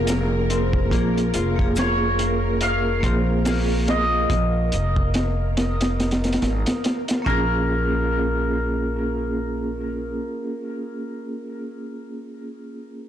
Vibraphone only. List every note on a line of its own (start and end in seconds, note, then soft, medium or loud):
0.00 0.90 A#3 medium
0.00 0.92 F4 medium
0.00 0.93 G#4 loud
0.90 1.52 A#3 loud
0.90 1.53 F4 medium
0.90 1.53 G#4 loud
1.56 2.98 A#3 medium
1.56 2.99 F4 medium
1.61 3.00 G#4 loud
3.01 4.24 A#3 medium
3.01 4.26 F4 medium
3.06 4.27 G#4 loud
7.22 11.49 A#3 medium
7.22 11.52 C#4 medium
7.27 11.54 F4 medium
7.27 11.57 G#4 loud